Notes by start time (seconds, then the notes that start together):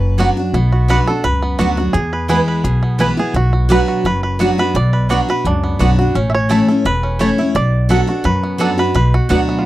Already playing: F#1 F#2 B4
0.18 F#3 B3 D4 F#4 D5 F#5
0.37 D4 F#4
0.53 B1 B2 B3
0.72 F#4
0.88 F#3 B3 D4 F#4 B4 D5 F#5
1.07 D4 F#4 A4
1.24 C#2 F#2 B4
1.42 B3
1.59 D2 F#3 B3 D4 F#4 D5 F#5
1.77 D4 F#4
1.93 E2 G#4
2.13 B4
2.28 E3 G#3 B3 E4 G#4 B4 G#5
2.48 B4
2.64 B1 B2 G#4
2.83 B3
2.98 E3 G#3 B3 E4 B4 G#5
3.17 B3 E4 G#4
3.34 B1 B2 F#4
3.53 F#4
3.69 F#3 B3 D4 F#4 B4 D5 F#5
3.88 F#4
4.04 F#1 F#2 B4
4.23 B4
4.39 F#3 B3 D4 F#4 D5 F#5
4.58 D4 F#4 B4
4.74 B1 B2 D5
4.93 B4
5.09 F#3 B3 D4 F#4 D5 F#5
5.28 D4 F#4 B4
5.45 C#2 F#2 D4
5.64 B3
5.79 B1 F#3 B3 D4 F#4 D5 F#5
5.98 D4 F#4
6.15 A1 A2 C#4
6.30 E5
6.34 C#5
6.49 E3 A3 C#4 E4 A4 C#5 A5
6.68 C#4 E4 A4
6.85 E1 E2 B4
7.03 C#4
7.19 E3 A3 C#4 E4 C#5 A5
7.38 C#4 E4
7.55 B1 B2 D5
7.89 F#3 B3 D4 F#4 A4 D5 F#5
8.07 D4 F#4
8.24 F#2 B4
8.43 B3
8.58 F#3 B3 D4 F#4 A4 D5 F#5
8.78 D4 F#4 B4
8.94 B1 B2 B4
9.14 F#4
9.29 D2 F#3 B3 D4 F#4 D5 F#5
9.49 B3
9.59 F4